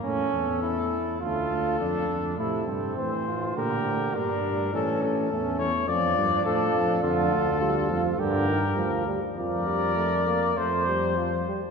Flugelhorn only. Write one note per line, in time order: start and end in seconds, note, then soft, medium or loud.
0.04 0.58 C#4 loud
0.62 1.20 E4 medium
1.21 1.79 F4 medium
1.79 2.37 D4 medium
2.38 2.66 E4 medium
2.67 3.26 C4 medium
3.27 3.59 F4 medium
3.58 4.16 G4 medium
4.15 4.73 D4 medium
4.73 5.30 C#4 medium
5.31 5.72 C#4 medium
5.89 7.01 D4 medium
7.03 7.60 F4 medium
7.60 8.21 F4 medium
8.19 9.09 G4 medium
9.36 10.53 A#4 medium
10.58 11.45 C5 medium